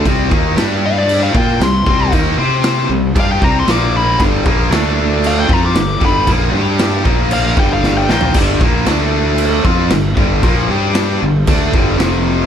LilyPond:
<<
  \new Staff \with { instrumentName = "Lead electric guitar" } { \time 4/4 \key c \major \tempo 4 = 116 r4. f''16 d''8 f''16 g''8 c'''4 | r2 f''16 g''16 bes''16 c'''16 d'''8 b''8 | r2 f''16 g''16 bes''16 d'''16 d'''8 b''8 | r2 f''8 g''16 f''8 g''16 g''8 |
r1 | r1 | }
  \new Staff \with { instrumentName = "Distorted electric guitar" } { \clef bass \time 4/4 \key c \major <c g c'>8 <ees bes ees'>8 <g d' g'>4. <bes f' bes'>8 <c g>8 <c g c'>8 | <ees bes ees'>8 <c' g' c''>4 <c g>8 <g d' g'>8 <c g c'>8 <bes, f bes>4 | <g, d g>8 <bes, f bes>8 <d a d'>4. <f c' f'>8 <g, d>8 <g, d g>8 | <bes, f bes>8 <g d' g'>4 <bes, f bes>4 <g, d g>4 <bes, f bes>8 |
<g, d g>8 <bes, f bes>8 <d a d'>4. <f c' f'>8 <g, d>8 <g, d g>8 | <bes, f bes>8 <g d' g'>4 <g, d>8 <d a d'>8 <g, d g>8 <f, c f>4 | }
  \new Staff \with { instrumentName = "Fingered electric bass" } { \clef bass \time 4/4 \key c \major c,8 ees,8 g,4. bes,8 c,8 c,8 | ees,8 c4 c,8 g,8 c,8 bes,,4 | g,,8 bes,,8 d,4. f,8 g,,8 g,,8 | bes,,8 g,4 bes,,4 g,,4 bes,,8 |
g,,8 bes,,8 d,4. f,8 g,,8 g,,8 | bes,,8 g,4 g,,8 d,8 g,,8 f,,4 | }
  \new DrumStaff \with { instrumentName = "Drums" } \drummode { \time 4/4 <cymc bd>8 bd8 <cymc sn>4 cymc8 bd8 <cymc sn>8 bd8 | <cymc bd>4 <cymc sn>4 <cymc bd>8 bd8 <cymc sn>4 | <cymc bd>8 bd8 <cymc sn>4 cymc8 bd8 <cymc sn>8 bd8 | <cymc bd>4 <cymc sn>8 bd8 cymc8 bd8 sn8 sn16 tomfh16 |
<cymc bd>8 bd8 <cymc sn>4 cymc8 bd8 <cymc sn>8 bd8 | <cymc bd>4 <cymc sn>4 <cymc bd>8 bd8 <cymc sn>4 | }
>>